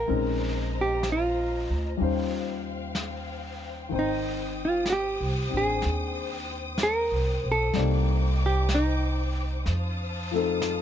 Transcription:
Already playing: A#4
0.07 A#1 G#3 C4 C#4 D#4 A#4 C5 D#5 A#5, brush sweep
0.81 G4
1.03 brush sweep, snare, hi-hat pedal
1.12 F4
1.70 D2
1.97 D#2 G3 C#4 D#4 F4 C5 F5 G5, brush sweep
2.03 C5
2.95 brush sweep, snare, hi-hat pedal
3.89 G#1 D#3 C4 D#4 D#6, brush sweep
3.94 C5 G5
3.99 D#4
4.65 F4
4.85 brush sweep, snare, hi-hat pedal
4.90 F#4 G4
5.20 C2
5.49 A1 C4 D4
5.57 G#4
5.82 D#2, brush sweep, snare
6.40 G4
6.78 brush sweep, snare, hi-hat pedal
6.83 A#4
7.11 C2
7.44 B1
7.52 A4
7.72 C2 G3 C4 D#4 D5 G5 D6, brush sweep, snare
7.77 A#3 D#4
8.46 G4
8.69 brush sweep, snare, hi-hat pedal
8.75 D#4
9.66 F2 F5 A5 D#6, brush sweep, snare
9.93 D4
10.31 F3 A3 C4 D#4
10.36 A4
10.62 brush sweep, snare, hi-hat pedal

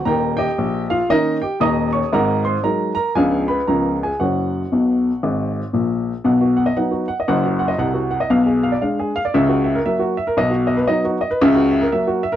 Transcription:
0.05 D#1 D#2 A#4 G5 A#5
0.37 G4 D#5 G5
0.58 A#1
0.90 F4 F5
1.09 D#3 A#3 C#4 D#4 A#4 D#5
1.42 G4 G5
1.60 D#1 D#2 D#5 A#5 D#6
1.93 C#5 C#6
2.13 G#1 G#2 A#4 F#5 A#5
2.45 C5 C6
2.63 F#3 G#3 D#4 A#4 A#5
2.95 A#4 A#5
3.15 C#2 C#3 F3 B3 D4 G#4 F5 G#5
3.48 B4 B5
3.67 C#2 C#3 F3 B3 C#4 A#4 A#5
4.03 G#4 G#5
4.20 F#1 F#2 F#4 C#5 F#5
4.72 B1 B2
5.23 G#1 G#2
5.73 A#1 A#2
6.24 B1 B2 F#5
6.41 F#4
6.57 F#5
6.66 D#5
6.77 F#3 B3 D#4 F#5
6.91 F#4
7.08 F#5
7.20 D#5
7.28 F#1 F#2 F#5
7.45 F#4
7.59 F#5
7.68 D#5
7.78 C2 C3 F#5
7.94 F#4
8.11 F#5
8.20 D#5
8.30 B1 B2 F5
8.46 G#4
8.63 F5
8.72 D5
8.82 G#3 D4 F5
8.99 G#4
9.16 F5
9.25 D5
9.34 C#2 C#3 E5
9.48 F#4
9.64 E5
9.75 A#4
9.86 F#3 A#3 E5
9.99 F#4
10.17 E5
10.27 A#4
10.37 B1 B2 D#5
10.50 F#4
10.67 D#5
10.77 B4
10.87 F#3 B3 D#4 D#5
11.05 F#4
11.21 D#5
11.31 B4
11.41 C#2 C#3 E5
11.55 F#4
11.71 E5
11.81 A#4
11.92 F#3 A#3 E5
12.07 F#4
12.23 E5
12.32 A#4

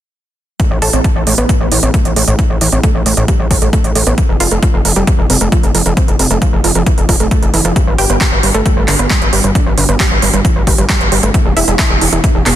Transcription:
0.60 A3, kick, closed hi-hat
0.71 A1
0.82 A1 A4, open hi-hat
0.93 A1 C4, closed hi-hat
1.04 A4, kick, closed hi-hat
1.16 A1
1.27 A1 A3, open hi-hat
1.38 A1 B3, closed hi-hat
1.49 A2, kick, closed hi-hat
1.60 A1
1.72 A1 E3, open hi-hat
1.83 A1 C4, closed hi-hat
1.94 A3, kick, closed hi-hat
2.05 A1, closed hi-hat
2.16 A1 A3, open hi-hat
2.28 A1 A2, closed hi-hat
2.39 E4, kick, closed hi-hat
2.50 A1
2.61 A1 E3, open hi-hat
2.72 A1 C4, closed hi-hat
2.83 A3, kick, closed hi-hat
2.95 A1
3.06 A1 A3, open hi-hat
3.17 A1 A2, closed hi-hat
3.28 G3, kick, closed hi-hat
3.40 A1
3.51 A1 A4, kick, open hi-hat
3.62 A1 A3, closed hi-hat
3.73 A3, kick, closed hi-hat
3.84 A1, closed hi-hat
3.95 A1 A3, open hi-hat
4.07 A1 B3, closed hi-hat
4.18 F3, kick, closed hi-hat
4.29 F1
4.40 F1 F4, open hi-hat
4.51 F1 A3, closed hi-hat
4.63 F4, kick, closed hi-hat
4.74 F1
4.85 F1 F3, open hi-hat
4.96 F1 G3, closed hi-hat
5.07 F2, kick, closed hi-hat
5.19 F1
5.30 F1 C3, open hi-hat
5.41 F1 A3, closed hi-hat
5.52 F3, kick, closed hi-hat
5.63 F1, closed hi-hat
5.75 F1 F3, open hi-hat
5.86 F1 F2, closed hi-hat
5.97 C4, kick, closed hi-hat
6.08 F1, closed hi-hat
6.19 F1 C3, open hi-hat
6.31 F1 A3, closed hi-hat
6.42 F3, kick, closed hi-hat
6.53 F1
6.64 F1 F3, open hi-hat
6.75 F1 F2, closed hi-hat
6.86 E3, kick, closed hi-hat
6.98 F1, closed hi-hat
7.09 F1 F3, kick, open hi-hat
7.20 F1 A3, closed hi-hat
7.31 A3, kick, closed hi-hat
7.42 F1, closed hi-hat
7.54 F1 E3, open hi-hat
7.65 F1 F3, closed hi-hat
7.76 G3, kick, closed hi-hat
7.87 G1
7.98 G1 G4, open hi-hat
8.10 G1 B3, closed hi-hat
8.21 G4, kick, clap, closed hi-hat
8.32 G1
8.43 G1 G3, open hi-hat
8.54 G1 A3, closed hi-hat
8.66 G2, kick, closed hi-hat
8.77 G1
8.88 G1 D3, clap, open hi-hat
8.99 G1 B3, closed hi-hat
9.10 G3, kick, clap, closed hi-hat
9.22 G1, closed hi-hat
9.33 G1 G3, open hi-hat
9.44 G1 G2, closed hi-hat
9.55 D4, kick, closed hi-hat
9.66 G1
9.78 G1 D3, open hi-hat
9.89 G1 B3, closed hi-hat
10.00 G3, kick, clap, closed hi-hat
10.11 G1
10.22 G1 G3, open hi-hat
10.34 G1 G2, closed hi-hat
10.45 F3, kick, closed hi-hat
10.56 G1
10.67 G1 G4, kick, open hi-hat
10.78 G1 G3, closed hi-hat
10.89 G3, kick, clap, closed hi-hat
11.01 G1, closed hi-hat
11.12 G1 G3, open hi-hat
11.23 G1 A3, closed hi-hat
11.34 E3, kick, closed hi-hat
11.45 E1
11.57 E1 E4, open hi-hat
11.68 E1 G#3, closed hi-hat
11.79 E4, kick, clap, closed hi-hat
11.90 E1
12.01 E1 E3, open hi-hat
12.13 E1 E3, closed hi-hat
12.24 E2, kick, closed hi-hat
12.35 E1
12.46 E1 B2, clap, open hi-hat

